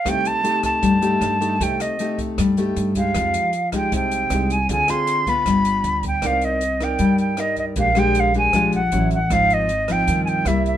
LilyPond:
<<
  \new Staff \with { instrumentName = "Flute" } { \time 4/4 \key c \minor \tempo 4 = 156 g''8 a''4 a''2~ a''8 | g''8 ees''4 r2 f''8~ | f''4. g''8 g''4. aes''8 | aes''8 c'''4 b''2 g''8 |
f''8 ees''4 g''4 g''8 ees''8 ees''8 | f''8 g''8 f''8 aes''4 fis''4 fis''8 | f''8 ees''4 g''8.~ g''32 aes''32 g''8 e''8 e''8 | }
  \new Staff \with { instrumentName = "Nylon-string guitar" } { \time 4/4 \key c \minor << { <a ees' g'>4 <a ees' g'>4. <a ees' g'>4 <a ees' g'>8 | <a ees' g'>4 <a ees' g'>4. <a ees' g'>4 <aes ees' g'>8~ | <aes ees' g'>4 r8 <aes ees' g'>4. <aes ees' g'>8 r8 | <c' f' aes'>8 <c' f' aes'>4 <b f'>2 r8 |
<ees' bes' d''>4 r8 <ees' bes' d''>4. <ees' bes' d''>4 | <aes d' g'>8 <aes d' g'>4 <aes d' g'>8 <aes d' g'>8 r8 <fis cis' e'>8 r8 | <f c' ees'>4 r8 <f c' ees'>4. <g bes e'>4 | } \\ { c2 g2 | c2 g2 | f2 c2 | d2 g2 |
c'2 g2 | bes,2 f4 r4 | aes,2 ees4 r4 | } >> }
  \new Staff \with { instrumentName = "Upright bass" } { \clef bass \time 4/4 \key c \minor c,8 r4. g,4 g,4 | c,8 r4. g,4 g,4 | f,8 r4. c,4 c,4 | d,8 r4. g,,4 d,4 |
c,2 g,2 | bes,,2 bes,,4 a,,4 | aes,,2 g,4 c,4 | }
  \new DrumStaff \with { instrumentName = "Drums" } \drummode { \time 4/4 <hh bd ss>8 hh8 hh8 <hh bd ss>8 <hh bd>8 hh8 <hh ss>8 hh8 | <hh bd>8 <hh ss>8 hh8 <hh bd>8 <hh bd ss>8 hh8 hh8 <hh bd>8 | <hh bd ss>8 hh8 hh8 <hh bd ss>8 <hh bd>8 hh8 <hh ss>8 hh8 | <hh bd>8 <hh ss>8 hh8 <hh bd>8 <hh bd ss>8 hh8 hh8 <hh bd>8 |
<hh bd ss>8 hh8 hh8 <hh bd ss>8 <hh bd>8 hh8 <hh ss>8 <hh bd>8 | <hh bd>8 <hh ss>8 hh8 <hh bd>8 <hh bd ss>8 hh8 hh8 <hh bd>8 | <hh bd ss>8 hh8 hh8 <hh bd ss>8 <hh bd>8 hh8 <hh ss>8 <hh bd>8 | }
>>